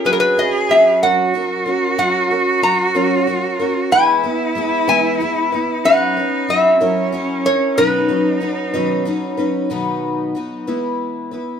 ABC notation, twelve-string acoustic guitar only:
X:1
M:6/8
L:1/8
Q:3/8=62
K:B
V:1 name="Twelve-string acoustic guitar"
[F,CFB] [CFB] [F,CFB] [F,CFA] [F,CFA] [CFA] | [F,CFA] [CFA] [F,CFA] [F,CFA] [F,CFA] [CFA] | [E,G,B,EB] [B,EB] [G,B,EB] [E,G,B,EB] [G,B,EB] [B,EB] | [F,CB] [CB] [F,CEB] [F,CEA] [F,CEA] [CEA] |
[B,,D,F,CDB] [F,CDB] [F,CDB] [B,,D,F,CDB] [F,CDB] [F,CDB] | [B,,D,F,B,DB]2 [F,B,DB] [E,G,B,EB]2 [B,EB] |]